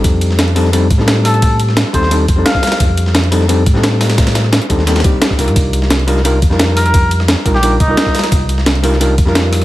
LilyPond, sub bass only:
\new Staff \with { instrumentName = "Sub bass" } { \clef bass \time 4/4 \key f \mixolydian \tempo 4 = 174 f,2~ f,8 a,4.~ | a,4~ a,16 r16 ees,4 f,8 r4 | f,2~ f,8 a,4.~ | a,4~ a,16 r16 ees,4 r4 c,16 a,16 |
c,2~ c,8 f,4.~ | f,4~ f,16 r16 bes,,4 c,8 r4 | c,2~ c,8 f,4. | }